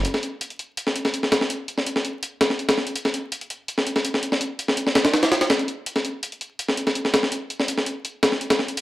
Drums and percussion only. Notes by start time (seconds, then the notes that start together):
0.05 closed hi-hat
0.14 snare
0.23 closed hi-hat
0.41 closed hi-hat
0.50 closed hi-hat
0.59 closed hi-hat
0.77 closed hi-hat
0.87 snare
0.96 closed hi-hat
1.05 snare
1.14 closed hi-hat
1.23 snare
1.32 snare, closed hi-hat
1.41 snare
1.50 closed hi-hat
1.68 closed hi-hat
1.78 snare
1.86 closed hi-hat
1.96 snare
2.05 closed hi-hat
2.23 closed hi-hat
2.41 snare, closed hi-hat
2.50 snare
2.59 closed hi-hat
2.69 snare, closed hi-hat
2.78 snare
2.87 closed hi-hat
2.96 closed hi-hat
3.05 snare
3.14 closed hi-hat
3.32 closed hi-hat
3.41 closed hi-hat
3.50 closed hi-hat
3.68 closed hi-hat
3.78 snare
3.87 closed hi-hat
3.96 snare
4.05 closed hi-hat
4.14 snare
4.23 closed hi-hat
4.32 snare
4.41 closed hi-hat
4.59 closed hi-hat
4.68 snare
4.77 closed hi-hat
4.87 snare
4.95 snare, closed hi-hat
5.05 snare, closed hi-hat
5.14 snare, closed hi-hat
5.23 snare, closed hi-hat
5.32 snare, closed hi-hat
5.41 snare, closed hi-hat
5.50 snare, closed hi-hat
5.59 closed hi-hat
5.68 closed hi-hat
5.86 closed hi-hat
5.96 snare
6.05 closed hi-hat
6.23 closed hi-hat
6.32 closed hi-hat
6.41 closed hi-hat
6.59 closed hi-hat
6.69 snare
6.77 closed hi-hat
6.87 snare
6.95 closed hi-hat
7.05 snare
7.14 snare, closed hi-hat
7.23 snare
7.32 closed hi-hat
7.50 closed hi-hat
7.60 snare
7.68 closed hi-hat
7.78 snare
7.86 closed hi-hat
8.05 closed hi-hat
8.23 snare, closed hi-hat
8.32 snare
8.41 closed hi-hat
8.50 snare, closed hi-hat
8.59 snare
8.68 closed hi-hat
8.77 closed hi-hat